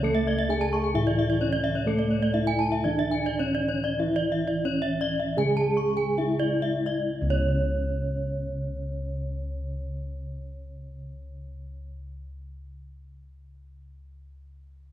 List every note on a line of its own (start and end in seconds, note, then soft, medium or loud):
0.00 0.93 C#2 loud
0.00 0.49 A3 medium
0.00 0.95 A3 medium
0.00 1.37 A4 medium
0.04 0.15 A4 medium
0.15 0.26 E5 medium
0.27 0.38 D5 medium
0.39 0.49 E5 medium
0.49 0.57 D4 soft
0.49 0.95 G#4 medium
0.49 0.61 G#5 loud
0.61 0.72 A5 medium
0.73 0.84 C#6 medium
0.84 0.95 G#5 medium
0.94 2.30 A2 medium
0.94 1.86 E3 medium
0.94 1.40 E4 loud
0.94 1.06 E5 loud
1.07 1.18 D5 medium
1.19 1.30 E5 medium
1.30 1.41 D5 medium
1.41 1.87 C#4 medium
1.41 1.49 D4 soft
1.41 1.52 C#5 medium
1.53 1.64 D5 medium
1.64 1.75 E5 medium
1.75 1.87 C#5 medium
1.86 2.34 A3 medium
1.86 2.85 A3 medium
1.86 3.36 A4 medium
1.86 1.98 A4 medium
1.99 2.10 D5 medium
2.11 2.22 C#5 medium
2.23 2.34 D5 medium
2.33 2.42 D4 soft
2.33 2.84 E4 medium
2.33 2.46 E5 medium
2.47 2.59 G#5 medium
2.59 2.72 A5 medium
2.72 2.85 E5 medium
2.84 4.00 D3 medium
2.84 4.61 E3 medium
2.84 3.40 D4 loud
2.84 2.98 D5 medium
2.99 3.12 E5 medium
3.11 3.25 G#5 medium
3.26 3.40 D5 medium
3.39 3.99 C#4 loud
3.39 3.48 D4 soft
3.39 3.54 C#5 loud
3.55 3.69 D5 medium
3.68 3.84 C#5 medium
3.84 3.99 D5 medium
3.99 5.38 E3 medium
3.99 6.15 E4 medium
3.99 4.65 E4 medium
3.99 4.15 E5 medium
4.16 4.32 D5 medium
4.32 4.48 E5 medium
4.48 4.65 D5 medium
4.65 5.37 C#4 loud
4.65 4.73 D4 soft
4.65 4.83 C#5 medium
4.82 5.00 E5 medium
5.01 5.19 D5 loud
5.20 5.38 E5 medium
5.37 8.05 C#3 medium
5.37 7.11 G#3 medium
5.37 6.18 G#4 loud
5.37 5.57 G#5 loud
5.57 5.77 A5 medium
5.77 5.97 C#6 medium
5.97 6.18 G#5 medium
6.17 6.27 D4 soft
6.17 7.10 E4 medium
6.17 6.40 E5 medium
6.40 6.63 D5 medium
6.62 6.86 E5 medium
6.86 7.10 D5 medium
7.22 11.81 C#2 medium
7.30 11.89 C#3 medium
7.30 11.90 C#4 medium
7.30 11.89 C#5 medium